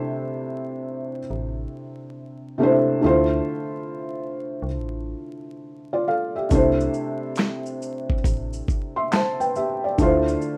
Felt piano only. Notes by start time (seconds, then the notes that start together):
Already playing: C3 A3 D4 E4 C5
2.58 C3 A3 D4 E4
2.63 C5
3.01 D3 A3 E4 F4
3.06 C5
5.93 F4 D5
6.08 A4 F5
6.36 G4 E5
6.49 C3 A3 D4 E4
6.54 C5
8.96 E5 C6
9.12 C5 A5
9.40 B4 G5
9.56 G4 E5
9.84 D5
9.98 D3 A3 E4 F4
10.02 C5